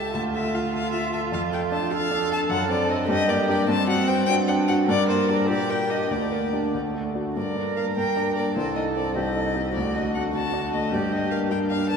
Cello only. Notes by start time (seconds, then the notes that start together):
Already playing: G4
0.14 F4
1.91 A4
2.50 A4
3.08 G4
3.67 C4
4.27 D4
4.87 A#4
5.48 G4
6.10 D4
7.36 A#4
8.56 A4
9.16 G4
9.35 A4
9.56 G4
9.75 F#4
10.93 G4
11.52 D4